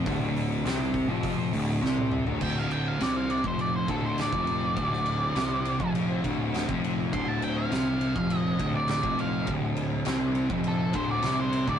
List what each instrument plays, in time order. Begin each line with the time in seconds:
0.06 picked electric bass D1, distorted electric guitar D2 D3, kick, open hi-hat
0.36 open hi-hat
0.65 picked electric bass C2, distorted electric guitar C3 C4, snare, open hi-hat
0.82 snare
0.94 kick, open hi-hat
1.08 picked electric bass F1, distorted electric guitar F2 F3
1.23 kick, open hi-hat
1.53 picked electric bass D1, distorted electric guitar D2 D3, open hi-hat
1.82 picked electric bass C2, distorted electric guitar C3 C4, snare
1.98 high tom
2.12 mid tom
2.25 picked electric bass D1, distorted electric guitar D2 D3, floor tom
2.41 picked electric bass D1, distorted electric guitar D2 D3, lead electric guitar G5, kick, crash
2.58 lead electric guitar F5, snare
2.71 lead electric guitar G5, ride
2.88 lead electric guitar F5
2.99 picked electric bass C2, distorted electric guitar C3 C4, lead electric guitar D5, snare, ride
3.16 lead electric guitar F5
3.30 lead electric guitar D5, ride
3.44 picked electric bass F1, distorted electric guitar F2 F3, lead electric guitar C5, kick
3.59 lead electric guitar D5, ride
3.76 lead electric guitar C5
3.88 picked electric bass D1, distorted electric guitar D2 D3, lead electric guitar A4, kick, ride
4.05 lead electric guitar C5
4.18 lead electric guitar D5, snare, ride
4.33 picked electric bass F1, distorted electric guitar F2 F3, kick
4.47 ride
4.77 picked electric bass D1, distorted electric guitar D2 D3, kick, ride
4.93 snare
5.06 ride
5.35 picked electric bass C2, distorted electric guitar C3 C4, snare, ride
5.65 ride
5.80 picked electric bass F1, distorted electric guitar F2 F3, kick
5.95 ride
6.24 picked electric bass D1, distorted electric guitar D2 D3, kick, ride
6.54 snare, ride
6.69 picked electric bass F1, distorted electric guitar F2 F3, kick
6.84 ride
7.13 picked electric bass D1, distorted electric guitar D2 D3, lead electric guitar C6, kick, ride
7.28 lead electric guitar A5
7.42 lead electric guitar G5, ride
7.57 lead electric guitar F5
7.71 picked electric bass C2, distorted electric guitar C3 C4, snare, ride
8.01 ride
8.15 picked electric bass F1, distorted electric guitar F2 F3, kick
8.30 ride
8.37 lead electric guitar D#5
8.59 picked electric bass D1, distorted electric guitar D2 D3, kick, ride
8.76 lead electric guitar D5
8.88 lead electric guitar D5, snare, ride
9.03 picked electric bass F1, distorted electric guitar F2 F3, kick
9.19 lead electric guitar F5, ride
9.47 picked electric bass D1, distorted electric guitar D2 D3, kick, ride
9.77 ride
10.05 picked electric bass C2, distorted electric guitar C3 C4, snare, ride
10.35 ride
10.50 picked electric bass F1, distorted electric guitar F2 F3, kick
10.64 ride
10.68 lead electric guitar A4
10.93 picked electric bass D1, distorted electric guitar D2 D3, lead electric guitar C5, kick, ride
11.11 lead electric guitar D5
11.22 picked electric bass C2, distorted electric guitar C3 C4, snare, ride
11.41 lead electric guitar C5
11.53 ride
11.67 picked electric bass D1, distorted electric guitar D2 D3, lead electric guitar D5, kick